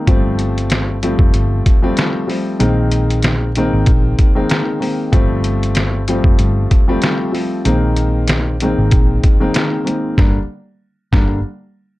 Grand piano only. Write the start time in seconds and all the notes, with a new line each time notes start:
0.07 F3 G3 A3 C4
1.03 F3 G3 A3 C4
1.82 F3 G3 A3 C4
2.27 F3 G3 A3 C4
2.59 D#3 G#3 A#3 C4
3.57 D#3 G#3 A#3 C4
4.35 D#3 G#3 A#3 C4
4.80 D#3 G#3 A#3 C4
5.12 F3 G3 A3 C4
6.08 F3 G3 A3 C4
6.88 F3 G3 A3 C4
7.32 F3 G3 A3 C4
7.65 D#3 G#3 A#3 C4
8.62 D#3 G#3 A#3 C4
9.40 D#3 G#3 A#3 C4
9.85 D#3 G#3 A#3 C4
10.17 D3 G3 A#3 D4
11.12 D3 G3 A#3 D4